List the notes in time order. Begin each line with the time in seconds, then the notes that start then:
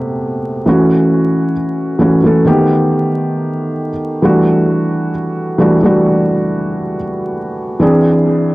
Already playing: C3 A3 B3 G4
0.66 E3 A3 C#4 F#4
1.99 E3 A3 C#4 F#4
2.24 E3 A3 C#4 A4
2.45 D#3 A3 B3 G4
4.22 E3 G3 A3 D4 F#4
5.58 E3 G3 A3 D4 F#4
5.83 E3 G3 A3 D4 F#4
7.80 E3 C4 D4 G#4